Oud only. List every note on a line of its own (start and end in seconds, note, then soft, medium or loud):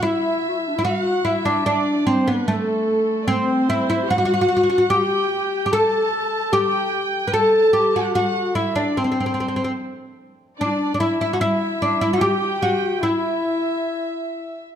0.03 0.77 E4 medium
0.79 0.84 E4 medium
0.85 1.24 F#4 medium
1.25 1.45 E4 medium
1.45 1.65 D4 medium
1.66 2.06 D4 medium
2.07 2.28 C4 medium
2.28 2.47 B3 medium
2.48 3.31 A3 medium
3.28 3.69 C4 medium
3.70 3.88 E4 medium
3.90 4.10 E4 medium
4.10 4.17 F#4 medium
4.18 4.24 F#4 medium
4.25 4.32 F#4 medium
4.34 4.40 F#4 medium
4.41 4.47 F#4 medium
4.48 4.55 F#4 medium
4.57 4.62 F#4 medium
4.63 4.68 F#4 medium
4.70 4.77 F#4 medium
4.78 4.86 F#4 medium
4.90 5.65 G4 medium
5.66 5.72 G4 medium
5.73 6.52 A4 loud
6.53 7.27 G4 loud
7.28 7.33 B4 medium
7.34 7.73 A4 medium
7.73 7.95 G4 medium
7.96 8.14 F#4 medium
8.15 8.55 F#4 medium
8.55 8.74 E4 medium
8.76 8.97 D4 medium
8.97 9.03 C4 medium
9.04 9.10 C4 medium
9.12 9.19 C4 medium
9.20 9.25 C4 soft
9.26 9.33 C4 medium
9.34 9.39 C4 soft
9.40 9.47 C4 medium
9.48 9.55 C4 soft
9.56 9.63 C4 medium
9.64 9.71 C4 medium
10.61 10.93 D4 medium
10.94 10.99 D4 medium
11.00 11.20 E4 medium
11.21 11.33 E4 medium
11.33 11.40 F#4 medium
11.41 11.82 E4 medium
11.82 12.01 D4 medium
12.01 12.13 E4 medium
12.13 12.20 F#4 medium
12.21 12.62 G4 medium
12.62 13.02 F#4 medium
13.03 14.60 E4 medium